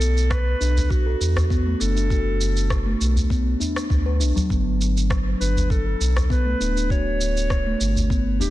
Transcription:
0.00 0.55 B1 loud
0.00 0.29 B3 medium
0.00 0.32 A4 loud
0.00 shaker medium
0.17 shaker soft
0.30 0.92 B4 loud
0.30 kick medium
0.30 cross-stick medium
0.30 shaker soft
0.61 1.15 B1 medium
0.61 1.05 D4 medium
0.61 shaker medium
0.77 udu medium
0.77 shaker soft
0.90 1.82 F#4 medium
0.90 kick loud
0.90 shaker soft
1.06 1.20 A4 medium
1.21 1.75 E2 medium
1.21 shaker medium
1.36 cross-stick medium
1.36 udu medium
1.36 shaker soft
1.50 1.65 B3 loud
1.50 kick loud
1.50 shaker soft
1.66 1.79 A3 medium
1.80 2.95 F#1 medium
1.80 1.95 D4 medium
1.80 3.00 A4 loud
1.80 shaker medium
1.96 2.09 D4 medium
1.96 shaker soft
2.10 2.69 F#4 medium
2.10 kick loud
2.10 shaker soft
2.41 shaker medium
2.57 shaker soft
2.70 kick loud
2.70 cross-stick medium
2.70 shaker soft
2.86 3.29 A3 medium
3.01 3.55 B1 medium
3.01 shaker medium
3.16 udu loud
3.16 shaker soft
3.30 3.45 B3 medium
3.30 kick loud
3.30 shaker soft
3.60 3.75 D4 loud
3.60 udu medium
3.60 shaker medium
3.76 cross-stick medium
3.76 shaker soft
3.90 4.22 D2 loud
3.90 kick loud
3.90 shaker soft
4.06 4.20 B4 loud
4.20 4.32 B1 medium
4.20 4.35 D4 loud
4.20 shaker medium
4.36 4.44 F#3 loud
4.36 udu medium
4.36 shaker soft
4.50 5.35 G1 loud
4.50 5.09 B3 medium
4.50 kick loud
4.50 shaker soft
4.81 shaker medium
4.97 shaker soft
5.10 kick loud
5.10 cross-stick medium
5.10 shaker soft
5.40 5.95 G1 medium
5.40 5.85 D4 medium
5.40 5.68 B4 medium
5.40 shaker medium
5.56 udu medium
5.56 shaker soft
5.70 6.27 A4 medium
5.70 kick loud
5.70 shaker soft
5.86 6.00 A4 medium
6.00 6.55 B1 loud
6.00 shaker medium
6.17 cross-stick medium
6.17 udu medium
6.17 shaker soft
6.30 6.45 B3 medium
6.30 6.87 B4 medium
6.30 kick loud
6.30 shaker soft
6.46 6.59 A3 medium
6.60 7.75 D1 loud
6.60 6.75 D4 medium
6.60 shaker medium
6.76 6.89 D4 medium
6.76 shaker soft
6.90 7.49 F#4 medium
6.90 8.07 C#5 loud
6.90 kick loud
6.90 shaker soft
7.21 shaker medium
7.37 shaker soft
7.50 kick loud
7.50 cross-stick medium
7.50 shaker soft
7.66 8.09 A3 medium
7.80 8.42 G1 medium
7.80 shaker medium
7.96 udu medium
7.96 shaker soft
8.10 8.25 B3 medium
8.10 kick loud
8.10 shaker soft
8.39 8.50 D1 medium
8.39 8.50 D4 loud
8.39 8.50 G4 medium
8.39 udu medium
8.39 shaker medium

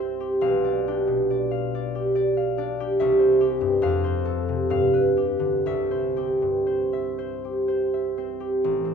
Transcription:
0.00 0.48 C2 medium
0.00 0.48 G2 soft
0.00 0.47 C4 soft
0.00 0.19 G4 soft
0.00 0.47 C5 soft
0.00 0.47 E5 soft
0.20 0.86 G4 medium
0.41 3.02 B1 medium
0.41 1.50 F5 medium
0.64 1.29 D5 medium
0.87 2.57 D4 medium
0.87 1.94 G4 medium
1.07 3.03 B2 medium
1.30 1.73 D5 medium
1.51 2.36 F5 medium
1.75 2.14 D5 medium
1.95 2.79 G4 medium
2.15 2.57 D5 medium
2.37 3.04 F5 medium
2.57 3.03 D4 medium
2.57 3.04 D5 medium
2.80 3.39 G4 medium
3.00 3.88 C2 medium
3.00 3.87 E5 medium
3.19 4.03 C5 medium
3.41 3.87 G4 medium
3.61 3.86 G2 medium
3.82 4.73 F2 medium
3.82 4.69 F5 medium
4.04 4.73 C5 medium
4.25 4.73 A4 medium
4.49 4.74 C3 medium
4.70 5.70 G2 medium
4.70 5.70 F5 medium
4.93 5.70 B4 medium
5.17 6.15 G4 medium
5.39 5.69 D3 medium
5.66 8.66 C2 medium
5.66 6.92 E5 medium
5.91 6.65 C5 medium
6.17 8.16 C4 soft
6.17 7.43 G4 medium
6.42 8.66 G2 soft
6.66 7.17 C5 medium
6.93 7.92 E5 medium
7.18 7.67 C5 soft
7.45 8.39 G4 soft
7.68 8.16 C5 soft
7.94 8.94 E5 soft
8.17 8.84 C4 soft
8.17 8.94 C5 soft
8.40 8.66 G4 medium
8.64 8.94 A1 medium
8.85 8.94 C4 medium

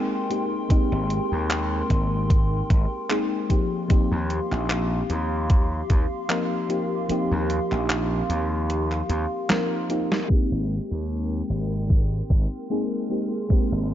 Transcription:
0.00 0.26 G#3 medium
0.00 0.26 A#3 medium
0.00 0.26 C4 medium
0.00 0.26 D#4 medium
0.00 0.26 G#4 loud
0.00 3.46 A#4 medium
0.00 3.46 G5 medium
0.00 3.46 C6 medium
0.30 0.66 G#3 medium
0.30 0.66 A#3 medium
0.30 0.66 C4 medium
0.30 0.66 D#4 medium
0.30 0.66 G4 medium
0.30 closed hi-hat medium
0.69 3.05 G#3 loud
0.69 3.06 A#3 medium
0.69 3.06 C4 medium
0.69 3.06 D#4 medium
0.69 3.07 G4 loud
0.69 muted slap bass stroke soft
0.69 kick loud
0.69 closed hi-hat medium
0.92 1.18 G#1 loud
1.10 closed hi-hat medium
1.32 1.81 D#2 medium
1.50 clap loud
1.50 closed hi-hat medium
1.90 2.61 G#1 medium
1.90 kick medium
1.90 closed hi-hat medium
2.30 kick loud
2.30 closed hi-hat medium
2.70 2.85 G#1 medium
2.70 kick loud
2.70 closed hi-hat medium
3.09 3.46 G#3 medium
3.09 3.46 A#3 medium
3.09 3.46 C4 medium
3.09 3.46 D#4 medium
3.09 3.46 G#4 medium
3.09 clap loud
3.09 closed hi-hat medium
3.49 3.85 F3 medium
3.49 3.86 A#3 medium
3.49 3.86 C4 medium
3.49 3.86 D#4 medium
3.49 10.26 G4 medium
3.49 3.86 G4 medium
3.49 10.26 F5 medium
3.49 10.26 C6 medium
3.49 kick medium
3.49 closed hi-hat medium
3.88 6.25 F3 medium
3.88 6.25 A#3 medium
3.88 6.26 C4 medium
3.88 6.26 D#4 medium
3.88 6.26 G4 loud
3.88 muted slap bass stroke soft
3.88 kick loud
3.88 closed hi-hat medium
4.12 4.38 D#2 loud
4.30 closed hi-hat medium
4.52 5.01 A#1 loud
4.52 clap soft
4.70 clap loud
4.70 closed hi-hat medium
5.10 5.81 D#2 medium
5.10 closed hi-hat medium
5.50 kick loud
5.50 closed hi-hat medium
5.90 6.05 D#2 medium
5.90 kick loud
5.90 closed hi-hat medium
6.29 6.65 F3 medium
6.29 6.65 A#3 medium
6.29 6.65 C4 medium
6.29 6.66 D#4 medium
6.29 6.66 A#4 loud
6.29 clap loud
6.29 closed hi-hat medium
6.69 7.05 F3 medium
6.69 7.05 A#3 medium
6.69 7.05 C4 medium
6.69 7.06 D#4 medium
6.69 7.06 G4 medium
6.69 closed hi-hat medium
7.08 9.45 F3 medium
7.08 9.45 A#3 medium
7.08 9.46 C4 medium
7.08 9.46 D#4 medium
7.08 9.47 G4 loud
7.08 muted slap bass stroke soft
7.08 closed hi-hat medium
7.32 7.58 D#2 loud
7.50 closed hi-hat medium
7.72 8.21 A#1 loud
7.72 clap soft
7.90 clap loud
7.90 closed hi-hat medium
8.30 9.01 D#2 medium
8.30 closed hi-hat medium
8.70 closed hi-hat medium
8.91 clap soft
8.91 closed hi-hat soft
9.09 9.25 D#2 medium
9.09 closed hi-hat medium
9.49 9.85 F3 medium
9.49 9.86 A#3 medium
9.49 9.86 C4 medium
9.49 9.86 D#4 medium
9.49 9.86 A#4 loud
9.49 snare loud
9.49 clap loud
9.49 closed hi-hat medium
9.89 10.25 F3 medium
9.89 10.26 A#3 medium
9.89 10.26 C4 medium
9.89 10.26 D#4 medium
9.89 10.26 G4 medium
9.89 closed hi-hat medium
10.12 snare medium
10.28 12.65 G#3 medium
10.28 12.65 A#3 medium
10.28 12.66 C4 medium
10.28 12.66 D#4 medium
10.28 12.66 G4 loud
10.28 13.94 A#4 medium
10.28 13.47 G5 medium
10.28 13.94 C6 medium
10.28 muted slap bass stroke soft
10.28 kick loud
10.28 crash medium
10.52 10.78 G#1 loud
10.91 11.41 D#2 medium
11.50 12.21 G#1 medium
11.90 kick loud
12.30 12.45 G#1 medium
12.30 kick loud
12.70 13.06 G#3 medium
12.70 13.06 A#3 medium
12.70 13.06 C4 medium
12.70 13.06 D#4 medium
12.70 13.06 G#4 medium
13.09 13.46 G#3 medium
13.09 13.46 A#3 medium
13.09 13.46 C4 medium
13.09 13.46 D#4 medium
13.09 13.46 G4 medium
13.49 13.94 G#3 medium
13.49 13.94 A#3 medium
13.49 13.94 C4 medium
13.49 13.94 D#4 medium
13.49 13.94 G4 loud
13.49 13.94 F5 medium
13.49 muted slap bass stroke soft
13.49 kick loud
13.72 13.94 G#1 medium

